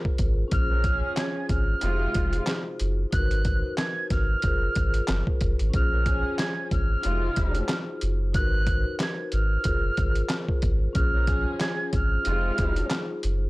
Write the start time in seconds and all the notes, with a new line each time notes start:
Already playing: F4 G#4 A#4 C5
0.05 kick
0.18 G#1, kick, closed hi-hat
0.48 C#4 F4 G#4, closed hi-hat
0.52 A#1 C5 F6, kick
0.70 F3 C#4 A#4
0.84 F3 C#4 G#4, kick, closed hi-hat
1.17 G#6, snare, clap, closed hi-hat
1.49 G#1 F6, kick, closed hi-hat
1.80 F1 C3 G#3 D#4 F4 F#4, closed hi-hat
1.85 C5
1.90 G#4
2.14 F1, kick, closed hi-hat
2.33 closed hi-hat
2.47 snare, clap, closed hi-hat
2.80 F#1, closed hi-hat
3.11 G#1 D#4 F#4 A#4 F#6, kick, closed hi-hat
3.17 B4
3.23 C5
3.31 closed hi-hat
3.45 kick, closed hi-hat
3.77 G#6, snare, clap, closed hi-hat
4.10 G#1 F6, kick, snare, closed hi-hat
4.39 F4 G#4 A#4, closed hi-hat
4.44 F#1 C5, kick
4.75 G#1, kick, closed hi-hat
4.94 closed hi-hat
5.08 F#1, snare, clap, closed hi-hat
5.27 kick
5.41 F#1, kick, closed hi-hat
5.59 G#1, closed hi-hat
5.70 C#4 F4 G#4, closed hi-hat
5.74 A#1 C5 F6, kick
5.92 F3 C#4 A#4
6.06 F3 C#4 G#4, kick, closed hi-hat
6.38 G#6, snare, clap, closed hi-hat
6.71 G#1 F6, kick, closed hi-hat
7.01 C3 G#3 D#4 F4 F#4, closed hi-hat
7.05 F1 C5
7.12 G#4
7.36 F1, kick, closed hi-hat
7.55 closed hi-hat
7.69 snare, clap, closed hi-hat
8.01 F#1, closed hi-hat
8.33 G#1 D#4 F#4 A#4 F#6, kick, closed hi-hat
8.38 B4
8.45 C5
8.67 kick, closed hi-hat
9.00 G#6, snare, clap, closed hi-hat
9.32 G#1 F6, closed hi-hat
9.61 F4 G#4 A#4, closed hi-hat
9.65 F#1 C5, kick
9.97 G#1, kick, closed hi-hat
10.15 closed hi-hat
10.29 snare, clap, closed hi-hat
10.49 kick
10.62 G#1, kick, closed hi-hat
10.93 A#1 C#4 F4 G#4 F6, kick, closed hi-hat
10.99 C5
11.14 F3 C#4 A#4
11.27 F3 C#4 G#4, kick, closed hi-hat
11.60 G#6, snare, clap, closed hi-hat
11.93 G#1 F6, kick, closed hi-hat
12.23 F1 C3 G#3 D#4 F4 G#4, closed hi-hat
12.29 C5
12.58 F1, kick, closed hi-hat
12.76 closed hi-hat
12.90 snare, clap, closed hi-hat
13.23 F#1, closed hi-hat